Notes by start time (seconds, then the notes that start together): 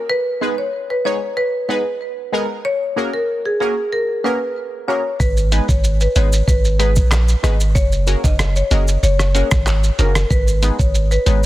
0.10 B4
0.41 G#3 B3 D#4 G#4 B4
0.58 C#5
0.90 B4
1.05 G#3 B3 D#4 G#4 C#5
1.37 B4
1.69 G#3 B3 D#4 G#4 B4
2.32 G#3 B3 D#4 G#4 A#4
2.65 C#5
2.96 A#3 C#4 F#4 G#4 A#4
3.14 A#4
3.46 G#4
3.60 A#3 C#4 F#4 G#4 A#4
3.93 A#4
4.24 A#3 C#4 F#4 G#4 A#4 B4
4.88 A#3 C#4 F#4 G#4 A#4 C#5
5.20 G#1 B4, kick, shaker, maracas
5.37 shaker, maracas
5.52 G#3 B3 D#4 G#4 B4, closed hi-hat, maracas, shaker
5.69 G#1 C#5, kick, shaker, maracas
5.84 shaker, maracas
6.01 B4, maracas, shaker
6.15 G#1 G#3 B3 D#4 G#4 B4 C#5, closed hi-hat, maracas, shaker
6.32 maracas, shaker
6.48 G#1 B4, kick, shaker, maracas
6.64 maracas, shaker
6.79 G#3 B3 D#4 G#4 B4, closed hi-hat, shaker, maracas
6.96 A#1, kick, maracas, shaker
7.12 cross-stick, clap, maracas, shaker
7.28 maracas, shaker
7.43 G#1 G#3 B3 D#4 G#4 B4, cross-stick, closed hi-hat, shaker, maracas
7.60 maracas, shaker
7.75 F#1 C#5, kick, shaker, maracas
7.92 maracas, shaker
8.07 A#3 C#4 F#4 G#4 A#4, closed hi-hat, maracas, shaker
8.24 F#1 D#5, kick, high timbale, shaker, maracas
8.39 cross-stick, maracas, shaker
8.56 C#5, maracas, shaker
8.71 F#1 A#3 C#4 F#4 G#4 A#4 D#5, closed hi-hat, maracas, shaker
8.88 maracas, shaker
9.03 F#1 C#5, shaker, maracas
9.19 cross-stick, shaker, maracas
9.35 A#3 C#4 F#4 G#4 A#4 C#5, closed hi-hat, shaker, maracas
9.51 G#1, kick, cross-stick, maracas, shaker
9.67 cross-stick, clap, shaker, maracas
9.83 maracas, shaker
9.98 F#1 A#3 C#4 F#4 G#4 A#4, closed hi-hat, high timbale, shaker, maracas
10.15 cross-stick, shaker, maracas
10.30 G#1 B4, kick, shaker, maracas
10.47 shaker, maracas
10.62 G#3 B3 D#4 G#4 B4, closed hi-hat, maracas, shaker
10.79 G#1 C#5, kick, shaker, maracas
10.95 shaker, maracas
11.11 B4, maracas, shaker
11.26 G#1 G#3 B3 D#4 G#4 B4 C#5, closed hi-hat, maracas, shaker